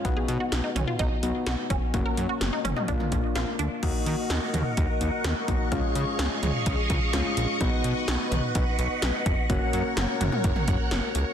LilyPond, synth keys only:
\new Staff \with { instrumentName = "Synth keys" } { \time 4/4 \key ees \minor \tempo 4 = 127 <b dis' fis'>2~ <b dis' fis'>8 <b dis' fis'>4. | <bes des' ges'>2 <bes d' f'>2 | <bes ees' ges'>2.~ <bes ees' ges'>8 <bes ees' ges'>8 | <aes des' f'>2. <aes des' f'>4 |
<b dis' fis'>1 | <bes des' ges'>1 | }